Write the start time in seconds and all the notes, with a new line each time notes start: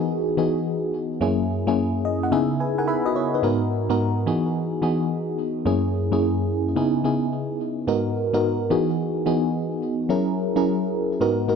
Already playing: E3 B3 D#4 F#4 G#4
0.37 E3 B3 D#4 F#4 G#4
1.21 F#2 A#3 C#4 E4 G#4
1.67 F#2 A#3 C#4 E4 G#4
2.05 D#5
2.23 F#5
2.32 C#3 B3 D#4 E4 G#4 E5
2.60 B4 G#5
2.78 A#4 F#5 G#5
2.88 G#4 E5 B5
3.06 F#4 D#5
3.16 E4 C#5
3.34 D#4 B4
3.43 G#2 B3 D#4 F#4 A#4
3.89 G#2 B3 D#4 F#4 A#4
4.26 E3 B3 D#4 F#4 G#4
4.82 E3 B3 D#4 F#4 G#4
5.65 F#2 A#3 C#4 E4 G#4
6.12 F#2 A#3 C#4 E4 G#4
6.76 C#3 B3 D#4 E4 G#4
7.04 C#3 B3 D#4 E4 G#4
7.87 G#2 B3 D#4 F#4 A#4
8.33 G#2 B3 D#4 F#4 A#4
8.70 E3 B3 D#4 F#4 G#4
9.26 E3 B3 D#4 F#4 G#4
10.09 F#3 C#4 E4 G#4 A#4
10.56 F#3 C#4 E4 G#4 A#4
11.20 G#2 B3 D#4 F#4 A#4
11.48 G#2 A#3 D#4 F#4 A#4